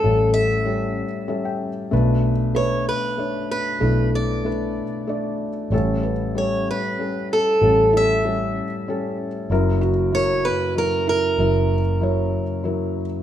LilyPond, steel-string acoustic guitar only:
\new Staff \with { instrumentName = "Steel-string acoustic guitar" } { \time 3/4 \key b \minor \tempo 4 = 95 a'8 e''2 r8 | r4 cis''8 b'4 b'8~ | b'8 d''2 r8 | r4 cis''8 b'4 a'8~ |
a'8 e''2 r8 | r4 cis''8 b'8 ais'8 ais'8~ | ais'2~ ais'8 r8 | }